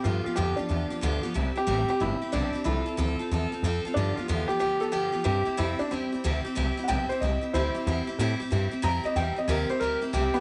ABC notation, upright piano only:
X:1
M:4/4
L:1/8
Q:"Swing" 1/4=184
K:C
V:1 name="Upright piano"
F F G D4 z | z G2 G E2 D2 | E3 z4 z | D F F G G A G2 |
G2 E D C3 z | z2 [^fg] c _e2 [=Ec]2- | [Ec]2 z4 _b _e | g _e _B c B z G [=B,G] |]